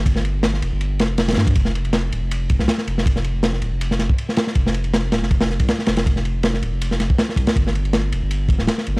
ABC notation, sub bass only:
X:1
M:4/4
L:1/16
Q:"Swing 16ths" 1/4=160
K:Gphr
V:1 name="Sub bass" clef=bass
G,,,6 F,,, G,,,3 F,,,4 G,,2 | F,,,6 E,,, F,,,4 C,, z2 F,,,2- | F,,,6 E,,, F,,,3 F,,, z4 z | F,,,6 E,,, F,,,4 C,, z2 F,,,2- |
F,,,6 E,,, F,,,3 F,,, z3 C,, z | G,,,6 F,,, G,,,4 D,,, z2 G,,,2 |]